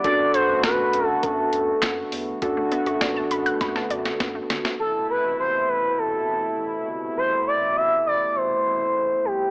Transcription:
0.00 2.38 D3 medium
0.00 2.38 B3 medium
0.00 0.32 D5 loud
0.04 0.25 F#2 loud
0.04 2.40 A3 medium
0.04 2.38 D4 medium
0.04 2.40 F#4 medium
0.04 2.38 F#4 medium
0.04 2.38 A4 medium
0.04 kick loud
0.04 closed hi-hat medium
0.33 0.61 C5 medium
0.33 closed hi-hat medium
0.49 0.60 F#2 medium
0.63 0.85 F#2 loud
0.63 1.06 B4 loud
0.63 kick loud
0.63 snare loud
0.63 closed hi-hat medium
0.93 1.14 F#2 loud
0.93 closed hi-hat medium
1.06 1.23 A4 loud
1.23 1.44 F#2 loud
1.23 2.12 A4 medium
1.23 kick loud
1.23 closed hi-hat medium
1.53 1.74 F#2 loud
1.53 closed hi-hat medium
1.82 2.03 F#2 loud
1.82 kick loud
1.82 snare loud
1.82 clap medium
1.82 closed hi-hat medium
2.12 2.33 E2 loud
2.12 open hi-hat medium
2.42 2.63 F#2 loud
2.42 2.51 D3 medium
2.42 4.77 D3 medium
2.42 4.77 A3 medium
2.42 4.77 B3 medium
2.42 4.76 D4 medium
2.42 4.76 F#4 medium
2.42 4.77 F#4 medium
2.42 4.76 A4 medium
2.42 kick loud
2.42 closed hi-hat medium
2.57 2.66 A3 medium
2.72 2.81 B3 medium
2.72 closed hi-hat medium
2.86 2.97 F#2 loud
2.86 2.96 F#4 medium
2.86 closed hi-hat medium
3.01 3.22 F#2 loud
3.01 3.11 D5 medium
3.01 kick loud
3.01 snare loud
3.01 closed hi-hat medium
3.16 3.26 A5 medium
3.31 3.52 F#2 loud
3.31 3.40 B5 medium
3.31 closed hi-hat medium
3.46 3.55 F#6 medium
3.46 closed hi-hat medium
3.61 3.82 F#2 loud
3.61 3.70 B5 loud
3.61 kick loud
3.61 snare medium
3.61 closed hi-hat medium
3.76 3.85 A5 medium
3.76 snare medium
3.90 4.11 F#2 medium
3.90 4.00 D5 medium
3.90 closed hi-hat medium
4.05 4.15 F#4 medium
4.05 snare medium
4.05 closed hi-hat soft
4.20 4.41 F#2 loud
4.20 4.29 B3 medium
4.20 kick loud
4.20 snare medium
4.20 closed hi-hat medium
4.35 4.44 A3 medium
4.50 4.71 G1 medium
4.50 4.59 D3 medium
4.50 snare loud
4.50 closed hi-hat medium
4.65 4.74 A3 medium
4.65 snare medium
4.65 closed hi-hat medium
4.80 5.01 A1 loud
4.80 9.51 B2 medium
4.80 9.51 C3 medium
4.80 9.51 A3 medium
4.80 9.51 E4 medium
4.80 5.07 A4 medium
5.10 5.37 B4 loud
5.24 5.35 A1 medium
5.39 5.60 A1 loud
5.39 5.70 C5 loud
5.69 5.90 A1 medium
5.69 6.00 B4 loud
5.98 6.19 A1 loud
5.98 6.87 A4 medium
6.28 6.49 A1 loud
6.58 6.79 A1 loud
6.87 7.08 G1 medium
7.17 7.38 A1 loud
7.17 7.45 C5 loud
7.47 7.78 D5 loud
7.62 7.72 A1 medium
7.76 7.97 A1 loud
7.76 8.06 E5 loud
8.06 8.27 A1 medium
8.06 8.37 D5 loud
8.36 8.57 A1 loud
8.36 9.27 C5 loud
8.66 8.87 A1 loud
8.96 9.16 A1 loud
9.25 9.46 C2 medium
9.25 9.51 G4 medium

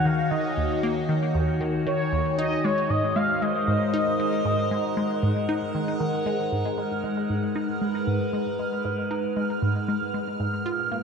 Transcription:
0.00 2.39 D#3 medium
0.00 11.03 D#4 medium
0.00 4.04 F#4 medium
0.00 2.39 C#5 medium
0.00 2.38 G#5 medium
0.05 0.14 D#3 medium
0.05 0.30 F5 medium
0.31 0.53 D#3 medium
0.31 0.79 D#5 medium
0.57 0.66 D#2 medium
0.83 1.05 A#3 loud
1.09 1.23 D#3 medium
1.35 1.49 D#2 medium
1.61 1.69 D#3 medium
1.87 2.08 D#3 medium
1.87 2.35 C#5 medium
2.13 2.21 D#2 medium
2.38 10.66 G#3 medium
2.38 2.60 D#4 loud
2.38 2.65 D#5 loud
2.64 2.79 G#3 medium
2.64 2.91 C#5 medium
2.89 3.04 G#2 medium
2.89 6.52 C5 medium
2.89 3.17 D#5 loud
2.94 11.03 A#4 medium
3.16 3.25 G#3 medium
3.16 3.43 F5 loud
3.42 3.63 G#3 medium
3.42 6.00 D#5 loud
3.68 3.76 G#2 medium
3.94 4.15 D#4 loud
4.20 4.34 G#3 medium
4.24 10.66 F#5 medium
4.45 4.59 G#2 medium
4.71 4.80 G#3 medium
4.97 5.18 G#3 medium
5.23 5.31 G#2 medium
5.49 5.70 D#4 loud
5.75 5.89 D#3 medium
6.00 6.15 D#3 medium
6.26 6.40 G#3 loud
6.52 6.66 G#2 medium
6.52 11.03 F6 medium
6.78 6.86 G#3 medium
7.04 7.25 G#3 medium
7.22 10.66 B4 medium
7.30 7.38 G#2 medium
7.56 7.77 D#4 medium
7.81 7.96 G#3 medium
8.07 8.22 G#2 medium
8.33 8.42 G#3 medium
8.59 8.80 G#3 medium
8.85 8.93 G#2 medium
9.11 9.32 D#4 medium
9.37 9.51 G#3 medium
9.62 9.77 G#2 medium
9.88 9.97 G#3 medium
10.14 10.36 G#3 medium
10.40 10.49 G#2 medium
10.66 11.03 A#2 medium
10.66 10.87 F4 loud
10.81 11.03 A#3 medium
10.92 11.03 A#3 medium

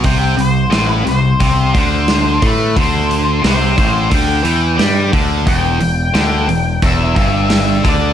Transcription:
0.04 0.36 C2 medium
0.04 0.36 C3 loud
0.04 0.40 G5 loud
0.04 kick loud
0.04 open hi-hat medium
0.37 0.69 C2 medium
0.37 0.65 C3 medium
0.37 0.89 C5 medium
0.37 open hi-hat medium
0.71 1.03 A1 medium
0.71 1.04 A2 loud
0.71 snare medium
0.71 open hi-hat medium
0.89 1.08 B4 medium
1.05 1.37 C2 medium
1.05 1.33 C3 medium
1.05 snare soft
1.05 open hi-hat soft
1.09 1.77 C5 loud
1.40 1.72 C2 medium
1.40 1.73 C3 loud
1.40 kick loud
1.40 open hi-hat medium
1.74 2.38 D2 medium
1.74 2.41 D3 medium
1.74 kick loud
1.74 open hi-hat medium
1.78 2.46 C5 medium
2.08 snare medium
2.08 open hi-hat medium
2.42 2.74 A2 medium
2.42 2.75 A3 medium
2.42 kick medium
2.42 open hi-hat soft
2.47 2.79 B4 medium
2.76 3.40 D2 medium
2.76 3.42 D3 medium
2.76 3.42 C5 medium
2.76 kick loud
2.76 open hi-hat medium
3.11 open hi-hat medium
3.42 3.75 C2 medium
3.42 3.76 C3 loud
3.42 snare loud
3.42 open hi-hat medium
3.46 4.15 C5 medium
3.77 4.09 A1 medium
3.77 4.10 A2 loud
3.77 kick loud
3.77 open hi-hat medium
4.11 4.43 D2 medium
4.11 4.43 D3 loud
4.11 5.11 G5 medium
4.11 kick loud
4.11 open hi-hat medium
4.44 4.77 E2 medium
4.44 4.78 E3 medium
4.44 open hi-hat medium
4.76 5.11 G2 medium
4.76 5.11 G3 medium
4.76 snare loud
4.76 open hi-hat medium
5.12 5.45 D2 medium
5.12 5.46 D3 medium
5.12 kick loud
5.12 open hi-hat soft
5.45 5.79 E1 medium
5.45 5.79 E2 loud
5.45 6.79 G5 medium
5.45 kick loud
5.45 open hi-hat medium
5.80 6.13 E1 medium
5.80 6.08 E2 medium
5.80 open hi-hat soft
6.14 6.47 D2 medium
6.14 6.48 D3 medium
6.14 snare loud
6.14 open hi-hat medium
6.48 6.80 E1 medium
6.48 6.75 E2 medium
6.48 open hi-hat soft
6.82 7.14 E1 medium
6.82 7.16 E2 medium
6.82 7.88 E5 medium
6.82 kick loud
6.82 open hi-hat medium
7.16 7.80 G1 medium
7.16 7.84 G2 medium
7.16 kick loud
7.16 open hi-hat soft
7.50 snare loud
7.50 open hi-hat medium
7.84 8.13 D2 medium
7.84 8.13 D3 medium
7.84 kick loud
7.84 open hi-hat medium
7.89 8.13 D5 medium

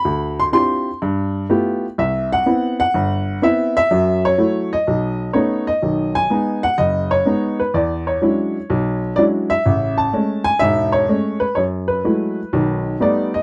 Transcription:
0.00 0.35 B5 loud
0.05 0.47 D2 medium
0.40 0.45 C6 medium
0.52 0.88 C4 medium
0.52 0.88 D4 soft
0.52 0.88 E4 soft
0.52 0.88 F4 soft
0.52 0.88 G4 medium
0.52 0.98 C6 medium
1.02 1.44 G2 medium
1.50 1.84 A3 medium
1.50 1.84 B3 medium
1.50 1.84 E4 medium
1.50 1.85 F4 medium
1.50 1.85 G4 medium
1.98 2.40 C2 medium
1.98 2.29 E5 medium
2.33 2.76 F#5 loud
2.46 2.81 B3 medium
2.46 2.81 C4 soft
2.46 2.81 E4 medium
2.80 3.45 F#5 loud
2.94 3.36 G1 medium
3.42 3.77 B3 medium
3.42 3.77 C4 soft
3.42 3.77 E4 medium
3.42 3.75 E5 medium
3.77 4.21 E5 loud
3.91 4.32 F#2 medium
3.91 4.32 F#3 medium
4.25 4.73 C#5 medium
4.38 4.73 F#3 medium
4.38 4.73 A3 medium
4.38 4.73 E4 medium
4.73 5.31 D#5 medium
4.87 5.29 B1 medium
5.33 5.69 A3 medium
5.33 5.69 B3 medium
5.33 5.69 C#4 medium
5.33 5.69 D#4 medium
5.33 5.64 C#5 medium
5.67 6.12 D#5 medium
5.82 6.24 B1 medium
5.82 6.24 D#3 medium
6.15 6.64 G#5 loud
6.30 6.64 G#3 soft
6.30 6.65 B3 soft
6.30 6.65 D#4 medium
6.63 6.77 F#5 loud
6.78 7.20 F#1 medium
6.78 7.12 D#5 medium
7.11 7.60 C#5 medium
7.25 7.60 G#3 medium
7.25 7.60 B3 soft
7.25 7.61 D#4 medium
7.60 7.75 B4 medium
7.74 8.16 E2 medium
7.74 8.05 D5 medium
8.07 8.99 C#5 medium
8.22 8.56 F#3 medium
8.22 8.56 G#3 soft
8.22 8.56 C#4 medium
8.22 8.56 D4 soft
8.22 8.57 E4 medium
8.70 9.11 B1 medium
9.16 9.52 F#3 medium
9.16 9.52 G#3 medium
9.16 9.52 C#4 soft
9.16 9.52 D4 soft
9.16 9.52 E4 medium
9.16 9.24 D5 medium
9.50 9.95 E5 medium
9.66 10.07 A1 medium
9.66 10.07 C#3 medium
9.98 10.47 A5 medium
10.13 10.48 G#3 medium
10.13 10.48 A3 soft
10.13 10.48 C#4 medium
10.44 10.61 G#5 loud
10.59 11.03 E1 medium
10.59 11.03 G#2 medium
10.59 10.91 E5 loud
10.92 11.43 C#5 medium
11.09 11.43 G#3 medium
11.09 11.43 A3 medium
11.09 11.44 C#4 medium
11.40 11.56 B4 medium
11.55 11.99 F#2 medium
11.55 11.63 C#5 medium
11.88 12.81 B4 medium
12.04 12.39 F#3 soft
12.04 12.39 G#3 soft
12.04 12.39 A3 medium
12.04 12.39 E4 medium
12.53 12.95 B1 medium
12.53 12.95 D#3 medium
13.00 13.35 G3 medium
13.00 13.35 A3 medium
13.00 13.35 B3 medium
13.00 13.35 D#4 medium
13.00 13.35 D5 medium
13.34 13.43 D#5 medium

